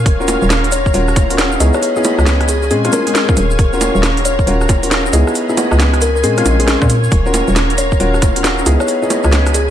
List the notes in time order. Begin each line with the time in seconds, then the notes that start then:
Already playing: C#5 F5
0.06 D#1 A#5, kick, closed hi-hat, shaker
0.20 C#4 F4 F#4 A#4, shaker
0.28 closed hi-hat, high bongo, shaker
0.42 D#1, shaker
0.50 snare, closed hi-hat, high bongo, shaker
0.64 closed hi-hat
0.72 C#5, closed hi-hat, shaker
0.86 kick, shaker
0.94 D#1 C#4 F4 F#4 A#4, closed hi-hat, shaker
1.08 cross-stick, shaker
1.16 kick, closed hi-hat, high bongo, shaker
1.30 C#4 F4 F#4 A#4, closed hi-hat, shaker
1.38 F#5, snare, closed hi-hat, shaker
1.52 shaker
1.60 C#2 B3 D#4 E4 G#4 D#5 G#5 B5, closed hi-hat, shaker
1.73 C#5, cross-stick, shaker
1.82 C#5, closed hi-hat, shaker
1.96 B3 D#4 E4 G#4, shaker
2.04 closed hi-hat, high bongo, shaker
2.19 C#2, cross-stick, shaker
2.26 snare, closed hi-hat, high bongo, shaker
2.41 cross-stick, closed hi-hat
2.48 G#4 C#5 F5 C6, closed hi-hat, shaker
2.62 G#4, shaker
2.70 A#2 G#3 C4 C#4 G#4, closed hi-hat, shaker
2.84 G#3 C4 C#4 F4, cross-stick, closed hi-hat, shaker
2.92 G#3 C4 C#4 F4 A#4, closed hi-hat, high bongo, shaker
3.07 G#3 C4 C#4 G#4, closed hi-hat, shaker
3.15 snare, closed hi-hat, shaker
3.29 G#3 C4 C#4 F4, kick, shaker
3.37 D#1, closed hi-hat, shaker
3.51 shaker
3.59 A#5, kick, closed hi-hat, shaker
3.73 C#4 F4 F#4 A#4, shaker
3.81 closed hi-hat, high bongo, shaker
3.95 D#1, shaker
4.03 snare, closed hi-hat, high bongo, shaker
4.17 closed hi-hat
4.25 C#5, closed hi-hat, shaker
4.39 kick, shaker
4.47 D#1 C#4 F4 F#4 A#4, closed hi-hat, shaker
4.61 cross-stick, shaker
4.69 kick, closed hi-hat, high bongo, shaker
4.83 C#4 F4 F#4 A#4, closed hi-hat, shaker
4.91 F#5, snare, closed hi-hat, shaker
5.06 shaker
5.13 C#2 B3 D#4 E4 G#4 D#5 G#5 B5, closed hi-hat, shaker
5.27 cross-stick, shaker
5.35 closed hi-hat, shaker
5.49 B3 D#4 E4 G#4, shaker
5.57 F#5, closed hi-hat, high bongo, shaker
5.71 C#2, cross-stick, shaker
5.80 snare, closed hi-hat, high bongo, shaker
5.94 cross-stick, closed hi-hat
6.01 A#4 C#5 F5 C6, closed hi-hat, shaker
6.15 A#4, shaker
6.23 A#2 G#3 C4 C#4 G#4, closed hi-hat, shaker
6.37 G#3 C4 C#4 F4, cross-stick, closed hi-hat, shaker
6.45 A#1 G#3 C4 C#4 F4, closed hi-hat, high bongo, shaker
6.59 G#3 C4 C#4 G#4, closed hi-hat, shaker
6.68 snare, closed hi-hat, shaker
6.82 A#2 G#3 C4 C#4 F4, kick, shaker
6.89 closed hi-hat, shaker
7.03 shaker
7.11 D#1 F5 A#5, kick, closed hi-hat, shaker
7.26 C#4 F4 F#4 A#4, shaker
7.34 closed hi-hat, high bongo, shaker
7.48 D#1, shaker
7.56 snare, closed hi-hat, high bongo, shaker
7.70 closed hi-hat
7.78 C#5, closed hi-hat, shaker
7.92 kick, shaker
8.00 D#1 C#4 F4 F#4 A#4, closed hi-hat, shaker
8.14 cross-stick, shaker
8.22 kick, closed hi-hat, high bongo, shaker
8.36 C#4 F4 F#4 A#4, closed hi-hat, shaker
8.44 F#5, snare, closed hi-hat, shaker
8.58 shaker
8.66 C#2 B3 D#4 E4 G#4 D#5 G#5 B5, closed hi-hat, shaker
8.80 C#5, cross-stick, shaker
8.87 C#5, closed hi-hat, shaker
9.02 B3 D#4 E4 G#4, shaker
9.10 closed hi-hat, high bongo, shaker
9.24 C#2, cross-stick, shaker
9.32 snare, closed hi-hat, high bongo, shaker
9.46 cross-stick, closed hi-hat, shaker
9.54 G#4 C#5 F5 C6, closed hi-hat, shaker